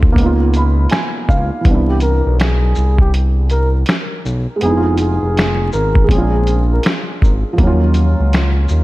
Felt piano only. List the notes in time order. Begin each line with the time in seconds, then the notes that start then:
Already playing: A3 C4 E4 F4 G#4
0.12 A#3
0.17 B3
0.22 D#4
0.26 F4
0.57 B5
0.91 G#5
1.29 F5
1.61 E3
1.65 B3
1.70 D4
1.75 E4
4.56 G#3
4.61 B3
4.65 D#4
4.70 E4
4.77 F4
6.04 G#3
6.08 C4
6.13 C#4
6.18 D4 F4
7.53 F3
7.58 F#3 A#3
7.62 C#4
7.67 F4